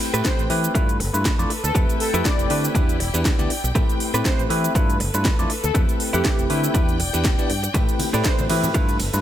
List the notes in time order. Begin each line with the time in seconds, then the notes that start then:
Already playing: A3 C4 E4 G4 B4 G5
0.00 open hi-hat
0.13 A2 A3 C4 E4 G4 A4 B4, closed hi-hat, shaker
0.24 C5, kick, snare, closed hi-hat, shaker
0.39 A1, closed hi-hat, shaker
0.50 E3 A3 C4 E4 G4 B4, open hi-hat
0.64 closed hi-hat, shaker
0.75 G2 A3 D4 E4 F4 A4 B4, kick, closed hi-hat, shaker
0.89 closed hi-hat, shaker
1.00 G1, muted clean electric guitar stroke, open hi-hat
1.13 G2 A3 D4 E4 F4 B4, muted clean electric guitar stroke, closed hi-hat, shaker
1.25 kick, snare, closed hi-hat, shaker
1.38 F2 A3 D4 E4 F4 D5, closed hi-hat, shaker
1.50 muted fingered electric bass stroke, muted clean electric guitar stroke, open hi-hat
1.63 D2 A4, muted clean electric guitar stroke, closed hi-hat, shaker
1.74 F2 A3 C4 E4 G4 A4 B4 G5, kick, closed hi-hat, shaker
1.89 closed hi-hat, shaker
2.00 A4, open hi-hat
2.13 F2 A3 C4 E4 G4 A4 B4, closed hi-hat, shaker
2.25 D5, kick, snare, closed hi-hat, shaker
2.39 F1, closed hi-hat, shaker
2.50 D3 A3 C4 E4 G4 B4, open hi-hat
2.64 closed hi-hat, shaker
2.75 E2 B3 D4 E4 G4 B4 D5 G5, kick, closed hi-hat, shaker
2.89 closed hi-hat, shaker
3.00 E1, muted clean electric guitar stroke, open hi-hat
3.14 E2 B3 D4 E4 G4 B4, muted clean electric guitar stroke, closed hi-hat, shaker
3.25 kick, snare, closed hi-hat, shaker
3.38 D2 B3 D4 E4 G4 D5, closed hi-hat, shaker
3.50 muted clean electric guitar stroke, muted fingered electric bass stroke, open hi-hat
3.64 B1, muted clean electric guitar stroke, closed hi-hat, shaker
3.75 A2 A3 C4 E4 G4 A4 B4, kick, closed hi-hat, shaker
3.89 closed hi-hat, shaker
4.00 open hi-hat
4.14 A2 A3 C4 E4 G4 A4 B4, closed hi-hat, shaker
4.24 C5, kick, snare, closed hi-hat, shaker
4.39 A1, closed hi-hat, shaker
4.50 E3 A3 C4 E4 G4 B4, open hi-hat
4.64 closed hi-hat, shaker
4.75 G2 A3 D4 E4 F4 A4 B4, kick, closed hi-hat, shaker
4.90 closed hi-hat, shaker
5.00 G1, muted clean electric guitar stroke, open hi-hat
5.14 G2 A3 D4 E4 F4 B4, muted clean electric guitar stroke, closed hi-hat, shaker
5.25 kick, snare, closed hi-hat, shaker
5.39 F2 A3 D4 E4 F4 D5, closed hi-hat, shaker
5.50 muted clean electric guitar stroke, muted fingered electric bass stroke, open hi-hat
5.64 D2 A4, muted clean electric guitar stroke, closed hi-hat, shaker
5.74 F2 A3 C4 E4 G4 A4 B4 G5, kick, closed hi-hat, shaker
5.89 closed hi-hat, shaker
6.00 open hi-hat
6.13 F2 A3 C4 E4 G4 A4 B4, closed hi-hat, shaker
6.25 kick, snare, closed hi-hat, shaker
6.39 F1, closed hi-hat, shaker
6.50 D3 A3 C4 E4 G4 B4, open hi-hat
6.64 closed hi-hat, shaker
6.74 E2 B3 D4 E4 G4 B4 D5, kick, closed hi-hat, shaker
6.89 closed hi-hat, shaker
7.00 E1, muted clean electric guitar stroke, open hi-hat
7.13 E2 B3 D4 E4 G4 B4, muted clean electric guitar stroke, closed hi-hat, shaker
7.25 E1, kick, snare, closed hi-hat, shaker
7.38 B3 D4 E4 G4 D5, closed hi-hat, shaker
7.50 G2, muted clean electric guitar stroke, open hi-hat
7.63 muted clean electric guitar stroke, closed hi-hat, shaker
7.74 A2 A3 C4 E4 G4 A4 B4, kick, closed hi-hat, tambourine, shaker
7.89 closed hi-hat, tambourine, shaker
7.99 open hi-hat, ride, tambourine, high conga
8.13 A2 A3 C4 E4 G4 A4 B4 D5, closed hi-hat, tambourine, shaker
8.24 C5, kick, snare, closed hi-hat, tambourine, shaker
8.38 A1, closed hi-hat, tambourine, high conga, shaker
8.49 E3 A3 C4 E4 G4 B4, open hi-hat, ride, tambourine, low conga
8.63 closed hi-hat, tambourine, low conga, shaker
8.74 G2 A3 D4 E4 F4 A4 B4, kick, closed hi-hat, tambourine, shaker
8.89 closed hi-hat, tambourine, shaker
8.99 G1, muted clean electric guitar stroke, open hi-hat, ride, tambourine
9.13 G2 A3 D4 E4 F4 B4, muted clean electric guitar stroke, closed hi-hat, tambourine, shaker